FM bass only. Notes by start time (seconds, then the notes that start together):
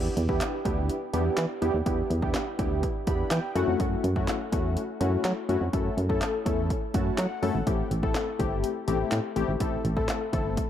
0.17 E2
0.65 D2
1.14 E2
1.38 E3
1.62 E2
1.74 D#2
1.86 E2
2.10 E2
2.59 D2
3.07 E2
3.31 E3
3.55 F#2
3.68 F2
3.80 F#2
4.04 F#2
4.53 E2
5.01 F#2
5.25 F#3
5.49 F#2
5.61 F2
5.73 F#2
5.97 F#2
6.46 E2
6.94 F#2
7.18 F#3
7.43 F#2
7.55 G#1
7.67 A1
7.91 A1
8.40 G1
8.88 A1
9.12 A2
9.36 A1
9.48 G#1
9.60 A1
9.85 A1
10.33 G1